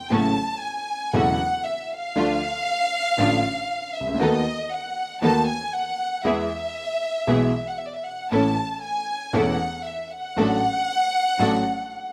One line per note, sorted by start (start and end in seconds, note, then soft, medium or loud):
0.10 0.33 A1 medium
0.10 0.32 A2 medium
0.10 0.32 C#3 medium
0.10 0.33 F#3 medium
0.10 0.32 A3 medium
0.10 0.33 A3 medium
0.10 0.32 C#4 medium
0.10 0.33 E4 medium
0.10 0.32 F#4 medium
0.10 0.63 A5 medium
0.62 1.14 G#5 medium
1.14 1.36 E1 medium
1.14 1.36 E2 medium
1.14 1.36 C#3 medium
1.14 1.36 F#3 medium
1.14 1.36 A3 medium
1.14 1.36 C#4 medium
1.14 1.36 E4 medium
1.14 1.36 F#4 medium
1.14 1.66 F#5 loud
1.65 1.91 E5 medium
1.91 3.95 F5 loud
2.16 2.38 D2 medium
2.16 2.38 D3 medium
2.16 2.38 F3 medium
2.16 2.38 A3 medium
2.16 2.38 D4 medium
2.16 2.38 F4 medium
3.17 3.40 A1 medium
3.17 3.40 A2 medium
3.17 3.39 D3 medium
3.17 3.40 F3 medium
3.17 3.40 A3 medium
3.17 3.40 D4 medium
3.17 3.40 F4 medium
3.94 4.20 E5 medium
4.00 4.07 C2 soft
4.07 4.14 C#2 medium
4.14 4.20 D2 medium
4.19 4.41 D#2 medium
4.19 4.41 D#3 medium
4.19 4.41 A3 medium
4.19 4.42 B3 medium
4.19 4.42 D#4 medium
4.19 4.41 F#4 medium
4.19 4.42 A4 medium
4.19 4.71 D#5 medium
4.72 5.23 F#5 medium
5.22 5.44 D#2 medium
5.22 5.43 D#3 medium
5.22 5.44 D#3 medium
5.22 5.44 A3 medium
5.22 5.43 B3 medium
5.22 5.44 B3 medium
5.22 5.43 D#4 medium
5.22 5.44 F#4 medium
5.22 5.44 A4 medium
5.22 5.46 A5 medium
5.48 5.72 G#5 medium
5.73 6.24 F#5 medium
6.24 6.46 E2 medium
6.24 6.46 E3 medium
6.24 6.46 G#3 medium
6.24 6.46 B3 medium
6.24 6.46 E4 medium
6.24 6.46 G#4 medium
6.24 7.68 E5 medium
7.27 7.49 B1 medium
7.27 7.49 B2 medium
7.27 7.49 E3 medium
7.27 7.49 G#3 medium
7.27 7.49 B3 medium
7.27 7.49 E4 medium
7.27 7.49 G#4 medium
7.69 7.78 F#5 medium
7.78 7.87 E5 medium
7.87 7.96 D5 medium
7.95 8.05 E5 medium
8.05 8.31 F#5 medium
8.31 8.53 A1 medium
8.31 8.53 A2 medium
8.31 8.53 E3 medium
8.31 8.53 A3 medium
8.31 8.53 C#4 medium
8.31 8.53 E4 medium
8.31 8.53 A4 medium
8.31 8.79 A5 medium
8.83 9.34 G#5 medium
9.33 9.55 E1 medium
9.33 9.56 E2 medium
9.33 9.55 E3 medium
9.33 9.55 A3 medium
9.33 9.55 C#4 medium
9.33 9.56 E4 medium
9.33 9.56 A4 medium
9.33 9.86 F#5 medium
9.86 10.11 E5 medium
10.12 12.12 F#5 loud
10.37 10.59 A1 medium
10.37 10.59 A2 medium
10.37 10.59 F#3 medium
10.37 10.59 A3 medium
10.37 10.59 D4 medium
10.37 10.59 F#4 medium
10.37 10.59 A4 medium
11.39 11.61 A1 medium
11.39 11.61 A2 medium
11.39 11.61 F#3 medium
11.39 11.61 A3 medium
11.39 11.61 D4 medium
11.39 11.61 F#4 medium
11.39 11.61 A4 medium